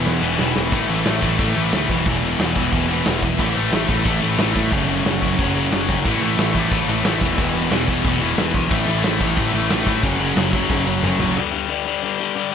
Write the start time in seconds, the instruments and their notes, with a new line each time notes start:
Already playing: distorted electric guitar E2 B2 E3
0.05 distorted electric guitar E2 B2 E3, picked electric bass E2, snare
0.20 picked electric bass E1, distorted electric guitar E2 B2 E3
0.37 picked electric bass E1, distorted electric guitar E2 B2 E3, snare
0.55 picked electric bass E1, distorted electric guitar E2 B2 E3, snare
0.71 picked electric bass A1, distorted electric guitar A2 E3 A3, kick, crash
0.88 picked electric bass A1, distorted electric guitar A2 E3 A3
1.05 picked electric bass A1, distorted electric guitar A2 E3 A3, snare, crash
1.21 picked electric bass A1, distorted electric guitar A2 E3 A3, kick
1.38 picked electric bass A1, distorted electric guitar A2 E3 A3, kick, crash
1.55 picked electric bass A1, distorted electric guitar A2 E3 A3
1.72 picked electric bass D2, distorted electric guitar A2 E3 A3, snare, crash
1.89 picked electric bass E1, distorted electric guitar E2 B2 E3, kick
2.06 picked electric bass E1, distorted electric guitar E2 B2 E3, kick, crash
2.23 distorted electric guitar E2 B2 E3
2.39 picked electric bass E1, distorted electric guitar E2 B2 E3, snare, crash
2.56 distorted electric guitar E2 B2 E3, kick
2.72 picked electric bass E1, distorted electric guitar E2 B2 E3, kick, crash
2.89 distorted electric guitar E2 B2 E3
3.06 picked electric bass E1, distorted electric guitar E2 B2 E3, snare, crash
3.22 picked electric bass E1, distorted electric guitar E2 B2 E3, kick
3.38 picked electric bass A1, distorted electric guitar A2 E3 A3, kick, crash
3.55 picked electric bass A1, distorted electric guitar A2 E3 A3
3.71 picked electric bass A1, distorted electric guitar A2 E3 A3, snare, crash
3.88 picked electric bass A1, distorted electric guitar A2 E3 A3, kick
4.04 picked electric bass A1, distorted electric guitar A2 E3 A3, kick, crash
4.21 picked electric bass A1, distorted electric guitar A2 E3 A3
4.38 picked electric bass A1, distorted electric guitar A2 E3 A3, snare, crash
4.54 distorted electric guitar A2 E3 A3, picked electric bass A2, kick
4.70 picked electric bass F#1, distorted electric guitar F#2 C#3 F#3, kick, crash
4.87 distorted electric guitar F#2 C#3 F#3
5.05 picked electric bass F#1, distorted electric guitar F#2 C#3 F#3, snare, crash
5.21 distorted electric guitar F#2 C#3 F#3, kick
5.37 picked electric bass F#1, distorted electric guitar F#2 C#3 F#3, kick, crash
5.55 distorted electric guitar F#2 C#3 F#3
5.71 picked electric bass F#1, distorted electric guitar F#2 C#3 F#3, snare, crash
5.88 picked electric bass F#1, distorted electric guitar F#2 C#3 F#3, kick
6.05 picked electric bass A1, distorted electric guitar A2 E3 A3, kick, crash
6.21 picked electric bass A1, distorted electric guitar A2 E3 A3
6.38 picked electric bass A1, distorted electric guitar A2 E3 A3, snare, crash
6.54 picked electric bass A1, distorted electric guitar A2 E3 A3, kick
6.71 picked electric bass A1, distorted electric guitar A2 E3 A3, kick, crash
6.87 picked electric bass A1, distorted electric guitar A2 E3 A3
7.04 picked electric bass A1, distorted electric guitar A2 E3 A3, snare, crash
7.20 picked electric bass E1, distorted electric guitar E2 B2 E3, kick
7.37 picked electric bass E1, distorted electric guitar E2 B2 E3, kick, crash
7.53 distorted electric guitar E2 B2 E3
7.70 picked electric bass E1, distorted electric guitar E2 B2 E3, snare, crash
7.87 distorted electric guitar E2 B2 E3, kick
8.04 picked electric bass E1, distorted electric guitar E2 B2 E3, kick, crash
8.21 distorted electric guitar E2 B2 E3
8.37 picked electric bass E1, distorted electric guitar E2 B2 E3, snare, crash
8.54 picked electric bass B1, distorted electric guitar E2 B2 E3, kick
8.70 picked electric bass A1, distorted electric guitar A2 E3 A3, kick, crash
8.87 picked electric bass A1, distorted electric guitar A2 E3 A3
9.03 picked electric bass A1, distorted electric guitar A2 E3 A3, snare, crash
9.20 picked electric bass A1, distorted electric guitar A2 E3 A3, kick
9.36 picked electric bass A1, distorted electric guitar A2 E3 A3, kick, crash
9.53 picked electric bass A1, distorted electric guitar A2 E3 A3
9.70 picked electric bass A1, distorted electric guitar A2 E3 A3, snare, crash
9.86 picked electric bass A2, distorted electric guitar A2 E3 A3, kick
10.03 picked electric bass F#1, distorted electric guitar F#2 C#3 F#3, kick, crash
10.19 distorted electric guitar F#2 C#3 F#3
10.36 picked electric bass F#1, distorted electric guitar F#2 C#3 F#3, snare, crash
10.53 distorted electric guitar F#2 C#3 F#3, kick
10.69 picked electric bass F#1, distorted electric guitar F#2 C#3 F#3, kick, snare
10.86 distorted electric guitar F#2 C#3 F#3
11.02 picked electric bass F#1, distorted electric guitar F#2 C#3 F#3, mid tom
11.19 picked electric bass F#1, distorted electric guitar F#2 C#3 F#3, floor tom
11.35 distorted electric guitar G2 D3 G3
11.52 distorted electric guitar G2 D3 G3
11.69 distorted electric guitar G2 D3 G3
11.85 distorted electric guitar G2 D3 G3
12.02 distorted electric guitar G2 D3 G3
12.19 distorted electric guitar G2 D3 G3
12.35 distorted electric guitar G2 D3 G3